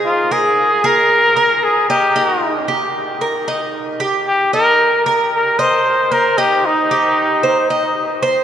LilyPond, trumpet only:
\new Staff \with { instrumentName = "Trumpet" } { \time 4/4 \key ees \major \tempo 4 = 114 f'8 aes'4 bes'4. aes'8 g'8~ | g'4 r2. | g'8 bes'4 r8 bes'8 c''4 bes'8 | g'8 ees'2. r8 | }